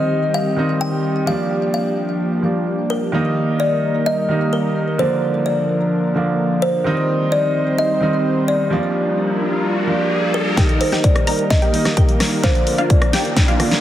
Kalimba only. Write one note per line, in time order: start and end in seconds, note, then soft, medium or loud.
0.00 0.36 D#5 medium
0.34 0.78 F5 loud
0.81 1.29 G5 loud
1.27 1.73 F5 loud
1.74 2.40 F5 medium
2.90 3.62 A#4 medium
3.60 4.03 D5 loud
4.06 4.54 D#5 loud
4.53 4.96 A#4 medium
4.99 5.47 C5 medium
5.46 6.12 D5 medium
6.62 7.34 C5 medium
7.32 7.80 D5 loud
7.78 8.50 D#5 loud
8.48 9.37 D5 medium
10.34 10.82 A#4 medium
10.81 11.02 C5 medium
11.04 11.52 D5 loud
11.50 11.94 D#5 loud
11.97 12.45 A#4 medium
12.44 12.87 C5 loud
12.90 13.56 D5 medium